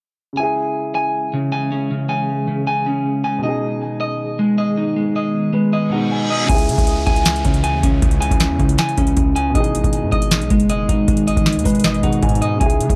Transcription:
0.33 grand piano C#3 G#3
0.37 ambient pad E3 G#3 C#4 G#4, grand piano E4, clean electric guitar G#5
0.43 grand piano G#4
0.95 clean electric guitar G#5
1.34 clean electric guitar C#3
1.52 clean electric guitar G#5
1.72 clean electric guitar C#4
1.91 clean electric guitar C#3
2.09 clean electric guitar G#5
2.48 clean electric guitar C#3
2.67 clean electric guitar G#5
2.86 clean electric guitar C#4
3.24 clean electric guitar G#5
3.39 grand piano B2 G#3
3.43 ambient pad D#3 B3, grand piano D#4, clean electric guitar D#5
3.49 grand piano G#4
4.01 clean electric guitar D#5
4.39 clean electric guitar G#3
4.58 clean electric guitar D#5
4.77 clean electric guitar D#4
4.96 clean electric guitar G#3
5.16 clean electric guitar D#5
5.53 clean electric guitar G#3, grand piano B4
5.73 grand piano D#5, clean electric guitar D#5, reverse cymbal
5.89 grand piano B2 G#3 D#4 F#5, clean electric guitar D#4
5.95 grand piano F#4
6.11 grand piano G#5
6.30 clean electric guitar D#5
6.44 grand piano C#3 G#3
6.49 808-style bass C#2, ambient pad C#3 E3 G#3 E4, grand piano E4, clean electric guitar G#5, kick, closed hi-hat, downlifter
6.55 grand piano G#4, closed hi-hat
6.68 808-style bass C#3, closed hi-hat
6.78 808-style bass C#2, kick, closed hi-hat
6.87 closed hi-hat
7.06 808-style bass C#2, clean electric guitar G#5, kick, closed hi-hat
7.16 closed hi-hat
7.25 snare, closed hi-hat
7.36 closed hi-hat
7.45 808-style bass C#2, clean electric guitar C#3, kick, closed hi-hat
7.54 closed hi-hat
7.64 clean electric guitar G#5, closed hi-hat
7.74 808-style bass D#2
7.83 808-style bass C#2, clean electric guitar C#4, kick, closed hi-hat
8.02 808-style bass C#2, clean electric guitar C#3, kick, closed hi-hat
8.11 closed hi-hat
8.21 clean electric guitar G#5, closed hi-hat
8.31 808-style bass C#2, kick, closed hi-hat
8.40 snare, closed hi-hat
8.50 808-style bass E2
8.59 808-style bass C#2, clean electric guitar C#3, kick, closed hi-hat
8.69 closed hi-hat
8.78 clean electric guitar G#5, snare, closed hi-hat
8.89 closed hi-hat
8.97 808-style bass C#2, clean electric guitar C#4, kick, closed hi-hat
9.07 closed hi-hat
9.17 808-style bass C#2, kick, closed hi-hat
9.36 clean electric guitar G#5, closed hi-hat
9.50 grand piano B2 G#3
9.55 808-style bass G#1, ambient pad B2 D#3 D#4, grand piano D#4, clean electric guitar D#5, kick, closed hi-hat
9.60 grand piano G#4, closed hi-hat
9.75 closed hi-hat
9.84 808-style bass G#1, kick, closed hi-hat
9.93 closed hi-hat
10.03 808-style bass G#2
10.12 808-style bass G#1, clean electric guitar D#5, kick, closed hi-hat
10.22 closed hi-hat
10.31 snare, closed hi-hat
10.41 808-style bass B1, closed hi-hat
10.50 808-style bass F#1, clean electric guitar G#3, kick, closed hi-hat
10.60 closed hi-hat
10.69 clean electric guitar D#5, closed hi-hat
10.89 808-style bass G#1, clean electric guitar D#4, kick, closed hi-hat
11.08 808-style bass G#1, clean electric guitar G#3, kick, closed hi-hat
11.17 closed hi-hat
11.27 clean electric guitar D#5, closed hi-hat
11.37 808-style bass G#1, kick, closed hi-hat
11.46 snare, closed hi-hat
11.53 808-style bass D#2, closed hi-hat
11.59 closed hi-hat
11.65 808-style bass G#1, clean electric guitar G#3, grand piano B4, kick, closed hi-hat, open hi-hat
11.70 closed hi-hat
11.75 closed hi-hat
11.80 closed hi-hat
11.84 grand piano D#5, clean electric guitar D#5, snare, closed hi-hat
11.94 closed hi-hat
12.01 808-style bass G#1, grand piano B2 G#3 D#4 F#5, clean electric guitar D#4, kick, closed hi-hat
12.06 grand piano F#4
12.13 closed hi-hat
12.22 808-style bass G#2, grand piano G#5, kick, closed hi-hat
12.29 closed hi-hat
12.35 closed hi-hat
12.42 clean electric guitar D#5, closed hi-hat
12.56 grand piano C#3 G#3
12.60 808-style bass C#2, ambient pad C#3 E3 E4, grand piano E4, clean electric guitar G#5, kick, closed hi-hat
12.66 grand piano G#4, closed hi-hat
12.80 808-style bass C#3, closed hi-hat
12.89 808-style bass C#2, kick, closed hi-hat

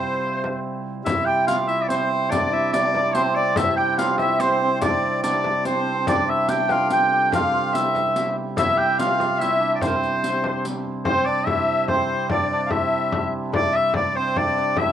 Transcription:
Already playing: pipe organ C3 G3, hammered dulcimer C4 E4, recorder C5, shawm C5
0.44 frame drum
1.03 pipe organ C3 G3, hammered dulcimer E4, shawm E5, recorder E5, riq, frame drum
1.25 hammered dulcimer G4, shawm G5, recorder G5
1.47 hammered dulcimer F4, shawm F5, recorder F5, riq, frame drum
1.67 hammered dulcimer E4, shawm E5, recorder E5, riq
1.82 shawm D5
1.88 hammered dulcimer C4, shawm C5, recorder C5, riq, frame drum
2.11 recorder C5
2.30 hammered dulcimer D4, shawm D5, recorder D5, riq, frame drum
2.51 hammered dulcimer E4, recorder E5
2.72 hammered dulcimer D4, shawm D5, recorder D5, riq, frame drum
2.93 hammered dulcimer D4, recorder D5, frame drum
3.15 hammered dulcimer C4, shawm C5, recorder C5, riq, frame drum
3.35 shawm D5, recorder D5
3.56 hammered dulcimer E4, shawm E5, recorder E5, riq, frame drum
3.77 hammered dulcimer G4, shawm G5, recorder G5
3.98 hammered dulcimer F4, recorder F5, shawm F5, riq, frame drum
4.18 hammered dulcimer E4, shawm E5, recorder E5, riq, frame drum
4.40 hammered dulcimer C4, shawm C5, recorder C5, riq, frame drum
4.62 hammered dulcimer C4, recorder C5
4.81 hammered dulcimer D4, shawm D5, recorder D5, riq, frame drum
5.03 frame drum
5.23 hammered dulcimer D4, shawm D5, recorder D5, riq, frame drum
5.44 hammered dulcimer D4, frame drum
5.65 hammered dulcimer C4, recorder C5, shawm C5, riq, frame drum
5.80 hammered dulcimer C4
5.94 hammered dulcimer C4
6.07 pipe organ C3 G3, hammered dulcimer D4, recorder D5, shawm D5, riq, frame drum
6.27 hammered dulcimer E4, recorder E5, shawm E5
6.48 hammered dulcimer G4, recorder G5, shawm G5, riq, frame drum
6.69 hammered dulcimer F4, shawm F5, riq, frame drum
6.86 hammered dulcimer A4, recorder G5, riq
6.91 hammered dulcimer G4, shawm G5, frame drum
7.13 hammered dulcimer G4
7.31 hammered dulcimer F4, recorder F5, shawm F5, riq, frame drum
7.54 hammered dulcimer F4
7.73 hammered dulcimer E4, recorder E5, shawm E5, riq, frame drum
7.95 riq, frame drum
8.16 riq, frame drum
8.56 hammered dulcimer E4, recorder E5, shawm E5, riq, frame drum
8.77 hammered dulcimer G4, shawm G5
8.98 hammered dulcimer F4, recorder F5, shawm F5, riq, frame drum
9.19 hammered dulcimer F4, riq, frame drum
9.33 recorder F5
9.38 hammered dulcimer E4, recorder E5, shawm E5, riq, frame drum
9.60 hammered dulcimer D4
9.75 shawm D5
9.81 hammered dulcimer C4, recorder C5, shawm C5, riq, frame drum
9.88 recorder A#4
9.96 recorder C5
10.03 riq
10.24 riq
10.44 frame drum
10.65 riq
10.85 frame drum
11.05 pipe organ C3 G3, hammered dulcimer C4, shawm C5, recorder C5, frame drum
11.25 hammered dulcimer D4, shawm D5, recorder D5
11.46 hammered dulcimer E4, shawm E5, recorder E5, frame drum
11.88 hammered dulcimer C4, shawm C5, recorder C5, frame drum
12.30 hammered dulcimer D4, recorder D5, shawm D5, frame drum
12.50 hammered dulcimer D4, recorder D5
12.65 recorder F5
12.70 hammered dulcimer E4, recorder E5, shawm E5, frame drum
13.12 frame drum
13.49 hammered dulcimer E4, recorder D5
13.54 hammered dulcimer D4, shawm D5, frame drum
13.73 recorder E5, shawm E5
13.94 hammered dulcimer D4, recorder D5, shawm D5, frame drum
14.15 hammered dulcimer C4, recorder C5, shawm C5
14.36 hammered dulcimer D4, recorder D5, shawm D5, frame drum
14.58 hammered dulcimer D4
14.76 hammered dulcimer E4, recorder E5, shawm E5, frame drum

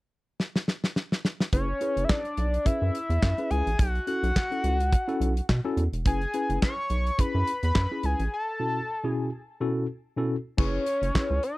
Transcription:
0.40 snare
0.56 snare
0.68 snare
0.84 snare
0.96 snare
1.12 snare
1.25 snare
1.40 snare
1.53 analog synth bass F#1, tine electric piano C#4 E4 G#4 B4, analog synth lead C#5, kick, closed hi-hat
1.81 tine electric piano C#4 E4 G#4 B4, closed hi-hat
1.97 analog synth bass F#1, closed hi-hat
2.04 analog synth lead E5
2.09 analog synth lead D5, kick, snare, clap
2.25 closed hi-hat
2.37 analog synth bass B1, closed hi-hat
2.54 closed hi-hat
2.65 analog synth bass F#2, tine electric piano C#4 E4 G#4 B4, analog synth lead E5, kick, closed hi-hat
2.82 analog synth bass F#2
2.95 closed hi-hat
3.10 analog synth bass E2, closed hi-hat
3.23 analog synth bass F#2, kick, snare, clap
3.38 tine electric piano C#4 E4 G#4 B4, closed hi-hat
3.50 analog synth bass C#2, analog synth lead G#5, closed hi-hat
3.67 analog synth bass A1, closed hi-hat
3.79 analog synth bass B1, analog synth lead F#5, kick, closed hi-hat
3.95 closed hi-hat
4.07 tine electric piano C#4 E4 F#4 A4, analog synth lead F#5, closed hi-hat
4.23 analog synth bass B1, closed hi-hat
4.36 kick, snare, clap
4.51 tine electric piano C#4 E4 F#4 A4, closed hi-hat
4.64 analog synth bass C#2, closed hi-hat
4.80 closed hi-hat
4.93 kick, closed hi-hat
5.08 tine electric piano C#4 E4 F#4 A4, closed hi-hat
5.20 analog synth bass B1, closed hi-hat
5.37 closed hi-hat
5.49 analog synth bass B2, kick, snare, clap
5.64 tine electric piano C#4 E4 F#4 A4
5.77 analog synth bass E2, closed hi-hat
5.93 analog synth bass E1, closed hi-hat
6.05 analog synth bass F#1, tine electric piano C#4 E4 G#4 B4, analog synth lead G#5, kick, closed hi-hat
6.21 closed hi-hat
6.34 tine electric piano C#4 E4 G#4 B4, closed hi-hat
6.50 analog synth bass F#1, closed hi-hat
6.62 analog synth lead C#6, kick, snare, clap
6.90 analog synth bass B1, closed hi-hat
7.07 closed hi-hat
7.18 analog synth bass F#2, tine electric piano C#4 E4 G#4 B4, analog synth lead B5, kick, closed hi-hat
7.35 analog synth bass F#2
7.47 closed hi-hat
7.63 analog synth bass E2, analog synth lead B5, closed hi-hat
7.75 analog synth bass F#2, kick, snare, clap
7.92 tine electric piano C#4 E4 G#4 B4
8.03 analog synth bass C#2, analog synth lead G#5, closed hi-hat
8.19 analog synth bass A1, closed hi-hat
8.33 analog synth lead A5
8.60 tine electric piano B2 C#4 E4 F#4 A4
9.04 tine electric piano B2 C#4 E4 F#4 G#4, analog synth lead G#5
9.60 tine electric piano B2 C#4 E4 F#4 A4
10.17 tine electric piano B2 C#4 E4 F#4 A4
10.58 analog synth bass F#1, tine electric piano C#4 E4 G#4 B4, analog synth lead C#5, kick, crash
10.86 closed hi-hat
11.02 analog synth bass F#1, closed hi-hat
11.14 tine electric piano C#4 E4 G#4 B4, kick, snare, clap
11.30 analog synth bass C#2
11.43 analog synth lead E5, closed hi-hat

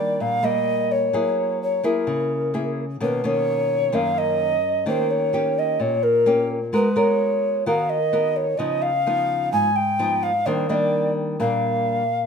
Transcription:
Already playing: nylon-string guitar D#3 G3 A#3 D4, ocarina D5
0.20 nylon-string guitar A#2, ocarina F5
0.43 nylon-string guitar G3 A#3, ocarina D#5
0.91 ocarina C#5
1.13 nylon-string guitar F#3 A#3 E4 G#4
1.62 ocarina C#5
1.83 nylon-string guitar A#3 E4 G#4, ocarina A#4
2.07 nylon-string guitar C#3
2.54 nylon-string guitar A#3 E4 G#4
3.00 nylon-string guitar B2 D#3 A#3 C#4, ocarina B4
3.24 nylon-string guitar D#3 A#3 C#4, ocarina C#5
3.92 nylon-string guitar F#2 D#3 A#3 C#4, ocarina F5
4.18 ocarina D#5
4.86 nylon-string guitar D#3 A#3 C#4 G4, ocarina C5
5.10 ocarina C#5
5.33 nylon-string guitar A#3 C#4 G4
5.59 ocarina D#5
5.80 nylon-string guitar A#2, ocarina C#5
6.03 ocarina A#4
6.26 nylon-string guitar A#3 C#4 G4
6.73 nylon-string guitar G#3 B3 F#4 A#4, ocarina B4
6.96 nylon-string guitar B3 F#4 A#4, ocarina C#5
7.66 nylon-string guitar D#3 B3 F#4 A#4, ocarina F5
7.89 ocarina D#5
8.13 nylon-string guitar B3 F#4 A#4
8.36 ocarina C#5
8.58 nylon-string guitar C#3 F3 B3 D#4, ocarina D#5
8.82 ocarina F5
9.07 nylon-string guitar F3 B3 D#4
9.52 nylon-string guitar G#2, ocarina G#5
9.76 ocarina G5
9.99 nylon-string guitar F3 B3 D#4
10.23 ocarina F5
10.46 nylon-string guitar D#3 G3 A#3 D4, ocarina C5
10.69 nylon-string guitar G3 A#3 D4, ocarina D#5
10.74 ocarina D5
11.40 nylon-string guitar A#2 G3 A#3 D4, ocarina F5

